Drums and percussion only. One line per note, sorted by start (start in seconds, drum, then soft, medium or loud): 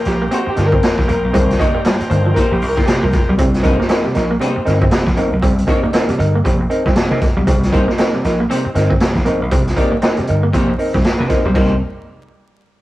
0.05 snare soft
0.05 closed hi-hat medium
0.31 closed hi-hat medium
0.56 snare soft
0.56 closed hi-hat medium
0.72 kick loud
0.83 snare loud
0.83 closed hi-hat medium
0.98 kick medium
0.98 snare soft
1.09 closed hi-hat medium
1.34 kick loud
1.34 closed hi-hat loud
1.50 snare soft
1.50 closed hi-hat medium
1.60 kick loud
1.60 closed hi-hat medium
1.85 snare loud
1.85 closed hi-hat medium
2.00 closed hi-hat medium
2.11 closed hi-hat medium
2.36 kick medium
2.36 closed hi-hat medium
2.62 open hi-hat medium
2.77 kick medium
2.77 snare soft
2.87 snare loud
2.87 closed hi-hat loud
3.12 kick loud
3.12 snare soft
3.12 closed hi-hat medium
3.38 kick loud
3.38 closed hi-hat loud
3.54 snare soft
3.54 closed hi-hat medium
3.64 kick loud
3.64 closed hi-hat medium
3.81 snare soft
3.89 snare medium
3.89 closed hi-hat medium
4.15 snare soft
4.15 closed hi-hat medium
4.41 closed hi-hat loud
4.66 snare soft
4.66 closed hi-hat medium
4.82 kick loud
4.91 snare loud
4.91 closed hi-hat loud
5.07 kick medium
5.07 snare soft
5.17 closed hi-hat medium
5.43 kick loud
5.43 closed hi-hat medium
5.58 closed hi-hat medium
5.68 kick loud
5.68 closed hi-hat medium
5.93 snare loud
5.93 closed hi-hat medium
6.08 closed hi-hat medium
6.20 closed hi-hat medium
6.45 kick medium
6.45 closed hi-hat medium
6.71 closed hi-hat medium
6.86 kick medium
6.86 snare soft
6.96 snare loud
6.96 closed hi-hat loud
7.21 kick loud
7.21 snare soft
7.21 closed hi-hat medium
7.47 kick loud
7.47 closed hi-hat loud
7.63 snare soft
7.63 closed hi-hat medium
7.73 kick medium
7.73 closed hi-hat medium
7.89 snare soft
7.98 snare loud
7.98 closed hi-hat medium
8.24 snare soft
8.24 closed hi-hat medium
8.51 closed hi-hat medium
8.75 snare soft
8.75 closed hi-hat medium
8.91 kick medium
9.00 snare loud
9.00 closed hi-hat medium
9.16 kick medium
9.16 snare soft
9.26 closed hi-hat medium
9.51 kick loud
9.51 closed hi-hat loud
9.67 snare soft
9.67 closed hi-hat medium
9.77 kick medium
9.77 closed hi-hat medium
10.02 snare loud
10.02 closed hi-hat medium
10.17 closed hi-hat medium
10.27 closed hi-hat medium
10.53 kick medium
10.53 closed hi-hat medium
10.79 open hi-hat medium
10.94 kick medium
10.94 snare soft
11.04 snare loud
11.04 closed hi-hat medium
11.30 kick loud
11.30 snare soft
11.30 closed hi-hat medium
11.55 kick loud
11.55 crash medium